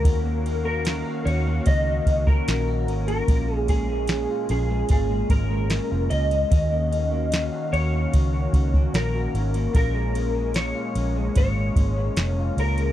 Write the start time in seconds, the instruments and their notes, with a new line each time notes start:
Already playing: clean electric guitar A#2 G#3 C#4 A#4, analog synth pad A#3
0.04 fingered electric bass D#2, clean electric guitar D#3 F#4, analog synth pad D#3 C#4 F#4 F5, kick, ride
0.25 clean electric guitar A#3
0.46 clean electric guitar C#4, ride
0.65 clean electric guitar A#3 A#4
0.85 clean electric guitar C#4, snare, ride
1.05 clean electric guitar F#4
1.25 fingered electric bass D#2, clean electric guitar C#4 C#5, ride
1.47 clean electric guitar A#3
1.66 fingered electric bass C#2, clean electric guitar D#3 F#4 D#5, kick, ride
1.87 clean electric guitar A#3
2.06 fingered electric bass C#2, clean electric guitar C#4, kick, ride
2.27 clean electric guitar A#3 A#4, kick
2.48 fingered electric bass A#1, clean electric guitar C#4, snare, ride
2.68 clean electric guitar F#4
2.88 fingered electric bass G#1, clean electric guitar C#4, ride
3.08 clean electric guitar A#3 A#4, ride
3.28 fingered electric bass A#1, clean electric guitar A#2 F4, analog synth pad G#3 A#3, kick, ride
3.48 clean electric guitar G#3
3.56 clean electric guitar G#4
3.68 clean electric guitar C#4 G#4, kick, ride
3.90 clean electric guitar G#3
4.07 clean electric guitar C#4, snare, ride
4.30 clean electric guitar F4
4.49 fingered electric bass A#1, clean electric guitar C#4 G#4, ride
4.70 clean electric guitar G#3
4.89 fingered electric bass G#1, clean electric guitar A#2 F4 G#4, kick, ride
5.10 clean electric guitar G#3
5.29 fingered electric bass G#1, clean electric guitar C#4 A#4, kick, ride
5.51 clean electric guitar G#3
5.70 clean electric guitar C#4, snare, ride
5.91 fingered electric bass F1, clean electric guitar F4
6.10 fingered electric bass C#2, clean electric guitar C#4 D#5, ride
6.31 clean electric guitar G#3, ride
6.50 fingered electric bass D#2, clean electric guitar D#3 F#4, analog synth pad D#3 F#4 F5, kick, ride
6.71 clean electric guitar A#3
6.91 clean electric guitar C#4, ride
7.12 clean electric guitar A#3
7.32 clean electric guitar C#4, snare, ride
7.52 clean electric guitar F#4
7.73 fingered electric bass D#2, clean electric guitar C#4 C#5, ride
7.93 clean electric guitar A#3
8.13 fingered electric bass C#2, clean electric guitar D#3 F#4, kick, ride
8.33 clean electric guitar A#3
8.53 fingered electric bass C#2, clean electric guitar C#4, kick, ride
8.74 clean electric guitar A#3, kick
8.94 fingered electric bass A#1, clean electric guitar C#4 A#4, snare, ride
9.15 clean electric guitar F#4
9.34 fingered electric bass G#1, clean electric guitar C#4, ride
9.54 clean electric guitar A#3, ride
9.73 fingered electric bass A#1, clean electric guitar A#2 F4 A#4, analog synth pad G#3, kick, ride
9.94 clean electric guitar G#3
10.14 clean electric guitar C#4, ride
10.34 clean electric guitar G#3
10.54 clean electric guitar C#4 C#5, snare, ride
10.75 clean electric guitar F4
10.95 fingered electric bass A#1, clean electric guitar C#4, ride
11.16 clean electric guitar G#3
11.35 fingered electric bass G#1, clean electric guitar A#2 F4 C#5, kick, ride
11.57 clean electric guitar G#3
11.76 fingered electric bass G#1, clean electric guitar C#4, kick, ride
11.97 clean electric guitar G#3
12.16 fingered electric bass F1, clean electric guitar C#4, snare, ride
12.39 clean electric guitar F4
12.57 fingered electric bass C#2, clean electric guitar C#4 A#4, ride
12.78 clean electric guitar G#3, ride